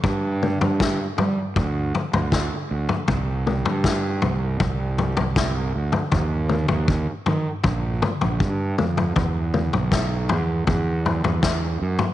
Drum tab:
SD |----o-------o---|----o-------o---|----------------|----o-------o---|
T2 |--o-------------|--o-------------|--o-------o---o-|--o-------------|
FT |o--o--o-o-oo---o|o--o--o-o-oo---o|o--o--o-o-oo---o|o--o--o-o-oo---o|
BD |o---o---o---o---|o---o---o---o---|o---o---o---o---|o---o---o---o---|